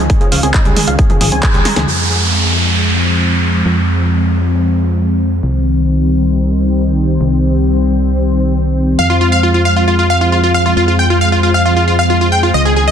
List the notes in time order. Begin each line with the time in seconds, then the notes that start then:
Already playing: D#3 G#3 C#4
0.10 G#4, kick, closed hi-hat
0.21 F3 G#4, closed hi-hat
0.32 C#2 F3 F5, open hi-hat
0.43 C#2 C4 G#4, closed hi-hat
0.54 D#3 D#5, kick, clap, closed hi-hat
0.65 C#2 G3 G#4, closed hi-hat
0.76 G#3 G#4, open hi-hat, mid tom
0.88 C#2 F3 F5, closed hi-hat
0.99 G#4, kick, closed hi-hat
1.10 F3 G#4, closed hi-hat, mid tom
1.21 G#1 F3 G#4, open hi-hat, mid tom
1.32 C#2 C4 G#5, closed hi-hat
1.43 D#3 G#4, kick, clap, closed hi-hat
1.54 C#2 G3 G#4, closed hi-hat
1.65 G#3 A#5, snare, open hi-hat
1.76 C#2 F3 G#4, snare, closed hi-hat, mid tom
1.88 F2 F3 G#3 C4, downlifter
3.66 F2
5.43 C2 D#3 G3
7.21 C2
8.98 F2 F3 G#3 F5
9.10 F4
9.21 F4
9.32 F5
9.43 F4
9.54 F4
9.65 F5
9.76 F4
9.88 F4
9.99 F4
10.10 F5
10.21 F4
10.32 F4
10.44 F4
10.54 F5
10.66 F4
10.77 F2 F4
10.88 F4
10.99 G5
11.10 F4
11.21 F5
11.32 F4
11.43 F4
11.54 F5
11.65 F4
11.77 F4
11.88 F4
11.99 F5
12.10 F4
12.21 F4
12.32 G5
12.43 F4
12.54 C#2 D#3 C#4 D#5
12.65 G#4
12.76 G#4
12.88 D#5